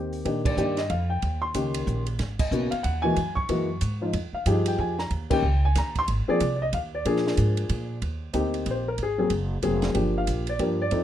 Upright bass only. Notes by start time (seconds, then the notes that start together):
Already playing: D#2
0.25 A#2
0.57 G2
0.90 F2
1.23 D#2
1.55 C#2
1.87 A#1
2.19 G#1
2.51 B1
2.72 muted upright bass stroke
2.84 D#2
3.17 F#2
3.49 F#2
3.82 G#2
4.13 F2
4.33 muted upright bass stroke
4.46 G2
4.78 F2
5.11 D#2
5.43 C#2
5.76 D#2
6.08 G#1
6.28 muted upright bass stroke
6.41 C2
6.73 D#2
7.05 A#2
7.37 G#2
7.70 A#2
8.02 D#2
8.34 D2
8.66 A#1
8.98 G#1
9.30 F#1
9.63 F1
9.95 G1
10.27 A#1
10.59 G2
10.92 F2